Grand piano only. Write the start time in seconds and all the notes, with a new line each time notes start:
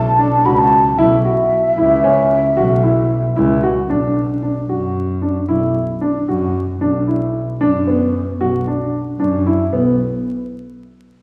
0.19 D4
0.45 F#4
0.98 E4
1.25 F#4
1.78 E4
2.04 C#4
2.57 F#4
2.83 E4
3.36 E4
3.63 F#4
3.90 D4
4.42 D4
4.69 F#4
5.22 D4
5.49 E4
6.01 D4
6.28 F#4
6.81 D4
7.08 E4
7.61 D4
7.87 B3
8.41 F#4
8.67 D4
9.20 D4
9.46 E4
9.73 B3